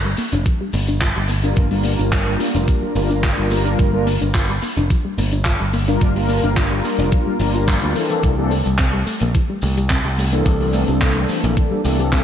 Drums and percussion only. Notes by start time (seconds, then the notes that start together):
0.17 open hi-hat, cabasa, shaker
0.32 closed hi-hat, cabasa, shaker
0.46 kick, closed hi-hat, cabasa, shaker
0.73 open hi-hat, cabasa, shaker
0.87 closed hi-hat, cabasa, shaker
1.01 kick, clap, closed hi-hat, cabasa, shaker
1.28 open hi-hat, cabasa, shaker
1.44 closed hi-hat, cabasa, shaker
1.56 kick, closed hi-hat, cabasa, shaker
1.71 open hi-hat
1.83 open hi-hat, cabasa, shaker
1.99 closed hi-hat, cabasa, shaker
2.12 kick, clap, closed hi-hat, cabasa, shaker
2.40 open hi-hat, cabasa, shaker
2.54 closed hi-hat, cabasa, shaker
2.68 kick, closed hi-hat, cabasa, shaker
2.96 open hi-hat, cabasa, shaker
3.10 closed hi-hat, cabasa, shaker
3.23 kick, clap, closed hi-hat, cabasa, shaker
3.51 open hi-hat, cabasa, shaker
3.65 closed hi-hat, cabasa, shaker
3.79 kick, closed hi-hat, cabasa, shaker
4.07 open hi-hat, cabasa, shaker
4.21 closed hi-hat, cabasa, shaker
4.34 kick, clap, closed hi-hat, cabasa, shaker
4.62 open hi-hat, cabasa, shaker
4.77 closed hi-hat, cabasa, shaker
4.90 kick, closed hi-hat, cabasa, shaker
5.18 open hi-hat, cabasa, shaker
5.32 closed hi-hat, cabasa, shaker
5.45 kick, clap, closed hi-hat, cabasa, shaker
5.73 open hi-hat, cabasa, shaker
5.88 closed hi-hat, cabasa, shaker
6.01 kick, closed hi-hat, cabasa, shaker
6.16 open hi-hat
6.29 open hi-hat, cabasa, shaker
6.44 closed hi-hat, cabasa, shaker
6.57 kick, clap, closed hi-hat, cabasa, shaker
6.84 open hi-hat, cabasa, shaker
6.99 closed hi-hat, cabasa, shaker
7.12 kick, closed hi-hat, cabasa, shaker
7.40 open hi-hat, cabasa, shaker
7.54 closed hi-hat, cabasa, shaker
7.68 kick, clap, closed hi-hat, cabasa, shaker
7.96 open hi-hat, cabasa, shaker
8.10 closed hi-hat, cabasa, shaker
8.23 kick, closed hi-hat, cabasa, shaker
8.51 open hi-hat, cabasa, shaker
8.66 closed hi-hat, cabasa, shaker
8.78 kick, clap, closed hi-hat, cabasa, shaker
9.07 open hi-hat, cabasa, shaker
9.20 closed hi-hat, cabasa, shaker
9.35 kick, closed hi-hat, cabasa, shaker
9.62 open hi-hat, cabasa, shaker
9.77 closed hi-hat, cabasa, shaker
9.90 kick, clap, closed hi-hat, cabasa, shaker
10.18 open hi-hat, cabasa, shaker
10.32 closed hi-hat, cabasa, shaker
10.46 kick, closed hi-hat, cabasa, shaker
10.61 open hi-hat
10.73 open hi-hat, cabasa, shaker
10.88 closed hi-hat, cabasa, shaker
11.01 kick, clap, closed hi-hat, cabasa, shaker
11.29 open hi-hat, cabasa, shaker
11.43 closed hi-hat, cabasa, shaker
11.56 kick, closed hi-hat, cabasa, shaker
11.85 open hi-hat, cabasa, shaker
11.99 closed hi-hat, cabasa, shaker
12.12 kick, clap, closed hi-hat, cabasa, shaker